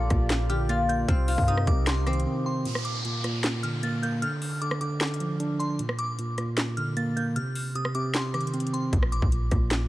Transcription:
Already playing: A#2 A#3 D4 F4 G4 A4 D5 D6
0.10 A#1 A#2, kick, cross-stick, closed hi-hat
0.30 A#2, snare, clap, closed hi-hat
0.49 D3 G4 F6, closed hi-hat
0.69 A#3 F4 A6, closed hi-hat
0.89 A#3 G6, closed hi-hat
1.08 C2 C3 C4 D#4 A#4 F6, kick, closed hi-hat
1.28 F4, open hi-hat
1.38 G2, kick
1.48 C3 D#4 D#6, closed hi-hat
1.57 cross-stick
1.67 C2 C3 D6, kick, closed hi-hat
1.87 C3 C6, snare, clap, closed hi-hat
2.07 D#3 C4 D6, cross-stick, closed hi-hat
2.13 closed hi-hat
2.20 closed hi-hat
2.26 C4
2.46 C4 C6
2.65 A#2, closed hi-hat, downlifter
2.75 cross-stick
2.85 D6, closed hi-hat
3.05 A#2, closed hi-hat
3.24 A#2, cross-stick, closed hi-hat
3.44 A#2, snare, clap, closed hi-hat
3.63 D3 F6, closed hi-hat
3.83 A#3 A6, closed hi-hat
4.03 A#3 G6, closed hi-hat
4.22 D3 F6, closed hi-hat
4.42 open hi-hat
4.61 D3 D6, closed hi-hat
4.71 cross-stick
4.81 D3 D6, closed hi-hat
5.01 D3, snare, clap, closed hi-hat
5.07 closed hi-hat
5.14 closed hi-hat
5.20 F3, closed hi-hat
5.40 D4, closed hi-hat
5.60 D4 C6, closed hi-hat
5.79 A#2, closed hi-hat
5.89 cross-stick
5.99 D6, closed hi-hat
6.18 A#2, closed hi-hat
6.38 A#2, cross-stick, closed hi-hat
6.57 A#2, snare, clap, closed hi-hat
6.77 D3 F6, closed hi-hat
6.97 A#3 A6, closed hi-hat
7.16 A#3 G6, closed hi-hat
7.36 C3 F6, closed hi-hat
7.55 open hi-hat
7.75 C3 D#6, closed hi-hat
7.85 cross-stick
7.95 C3 D6, closed hi-hat
8.14 C3 C6, snare, clap, closed hi-hat
8.34 D#3 D6, cross-stick, closed hi-hat
8.41 closed hi-hat
8.47 closed hi-hat
8.54 C4, closed hi-hat
8.60 closed hi-hat
8.67 closed hi-hat
8.73 C4 C6, closed hi-hat
8.93 A#1 A#2, kick, closed hi-hat
9.03 cross-stick
9.12 A1 D6, closed hi-hat
9.22 A#1, kick
9.32 A#2, closed hi-hat
9.51 A#1 A#2, kick, cross-stick, closed hi-hat
9.71 A#2, snare, clap, closed hi-hat

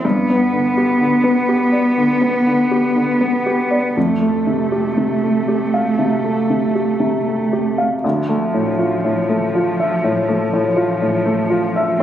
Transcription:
0.04 G2 B3
0.30 B3
0.53 D3
0.77 G4
1.01 D3
1.24 B3
1.48 G4
1.72 D5
1.98 D3
2.22 B3
2.47 D3
2.71 G4
2.96 D3
3.21 B3
3.46 G4
3.71 D5
3.95 F2 A3
4.21 A3
4.47 C3
4.72 G4
4.97 C3
5.23 A3
5.48 G4
5.74 F5
5.99 C3
6.24 A3
6.50 C3
6.75 G4
7.00 C3
7.27 A3
7.53 G4
7.78 F5
8.03 D2 F3
8.29 A3
8.54 A2
8.79 F4
9.04 A2
9.29 A3
9.55 F4
9.80 E5
10.04 A2
10.29 A3
10.53 A2
10.76 F4
11.02 A2
11.26 A3
11.50 F4
11.76 E5

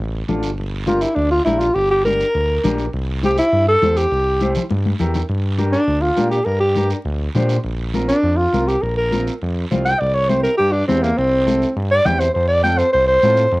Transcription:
0.00 A1, high conga
0.28 A1 D4 F4 A4, high conga, low conga, short guiro
0.43 G1, short guiro
0.58 G1, high conga, long guiro
0.87 D4 F4 G4 A#4, high conga, short guiro
1.01 E4, short guiro
1.15 D2 D4, high conga, long guiro
1.31 F4
1.45 A#1 D4 E4 G4 A#4, high conga, short guiro
1.59 F4, short guiro
1.74 G1 G4, high conga, long guiro
1.91 G4
2.05 D4 G4 A#4, high conga, short guiro
2.20 short guiro
2.35 D2, high conga, long guiro
2.64 A#1 D4 G4 A#4, high conga, low conga, short guiro
2.78 short guiro
2.93 C2, high conga, long guiro
3.23 E4 G4 C5, high conga, short guiro
3.38 E4, short guiro
3.52 G2, high conga, long guiro
3.68 A4
3.82 E2 E4 G4 C5, high conga, short guiro
3.96 G4, short guiro
4.11 C2, high conga, long guiro
4.40 E4 G4 C5, high conga, short guiro
4.55 low conga, short guiro
4.70 G2, high conga, long guiro
4.86 high conga
4.99 E2 E4 G4 A#4, low conga, short guiro
5.14 low conga, short guiro
5.29 G2, high conga, long guiro
5.58 D4 G4 A#4, high conga, short guiro
5.72 D4, short guiro
5.87 D2, high conga, long guiro
6.01 F4
6.16 A#2 D4 G4 A#4, high conga, short guiro
6.31 G4, short guiro
6.45 G2 A#4, high conga, long guiro
6.60 G4
6.75 D4 G4 A#4, high conga, short guiro
6.90 short guiro
7.05 D2, high conga, long guiro
7.35 A#2 D4 G4 C5, high conga, low conga, short guiro
7.49 short guiro
7.64 A#1, high conga, long guiro
7.94 C4 F4 A#4, high conga, short guiro
8.08 D4, short guiro
8.23 F2, high conga, long guiro
8.37 F4
8.53 C2 C4 F4 A#4, high conga, short guiro
8.67 G4, short guiro
8.82 A#1 A#4, high conga, long guiro
8.97 A#4
9.11 C4 F4 A#4, high conga, short guiro
9.27 short guiro
9.41 F2, high conga, long guiro
9.71 C2 C4 F4 C5, high conga, low conga, short guiro
9.85 G5, short guiro
10.00 C2 D5, high conga, long guiro
10.14 C#5
10.29 C4 E4 G4 C5, high conga, short guiro
10.43 A#4, short guiro
10.57 G2 G4, high conga, long guiro
10.72 D4
10.87 E2 C4 E4 G4, high conga, short guiro
11.02 A#3, short guiro
11.17 C2 C4, high conga, long guiro
11.46 C4 E4 A4, high conga, short guiro
11.62 short guiro
11.76 G2, high conga, long guiro
11.91 D5
12.05 E2 C4 E4 G4 G5, high conga, low conga, short guiro
12.20 C5, short guiro
12.34 F2 C5, high conga, long guiro
12.48 D5
12.64 C4 F4 A4 G5, high conga, short guiro
12.78 C5, short guiro
12.93 C2 C5, high conga, long guiro
13.07 C5
13.22 A2 C4 F4 A4, high conga, short guiro
13.37 short guiro
13.52 F2, high conga, long guiro

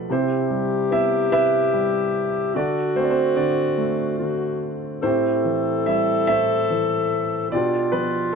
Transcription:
Already playing: B2 F3 G3 A3 B3 F4 A4 B4
0.09 C3 C4 E4 G4 C5
0.50 G3
0.91 B3 E4 E5
1.32 C3 E4 B4 E5
1.74 G3
2.54 D3 D4 F#4 A4 D5
2.96 A3 C4 C5
3.04 D5
3.10 C4 C5
3.36 D3 D4 F#4 D5
3.78 A3
4.19 D3 F#4
5.02 A2 C4 E4 G4 A4 C5
5.45 E3
5.86 G3 E4 E5
6.27 A2 E4 C5 E5
6.70 E3
7.50 B2 F4 D5
7.54 D4 F4 G4
7.92 F3 B3 B4

